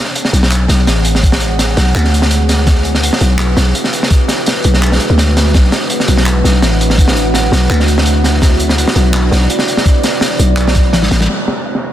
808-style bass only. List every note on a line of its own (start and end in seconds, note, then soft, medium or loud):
0.33 0.68 B1 loud
0.69 0.88 B1 medium
0.87 1.76 A1 medium
1.77 1.94 B1 loud
1.95 3.11 D2 loud
3.21 3.56 B1 medium
3.57 3.73 B1 medium
4.65 4.99 B1 medium
5.10 5.53 D2 loud
5.54 5.71 B1 loud
6.08 6.43 B1 medium
6.44 6.64 B1 medium
6.62 7.51 A1 medium
7.52 7.69 B1 loud
7.70 8.86 D2 loud
8.96 9.31 B1 loud
9.31 9.48 B1 medium
10.39 10.95 B1 loud
10.93 11.10 A1 medium
11.11 11.28 A1 loud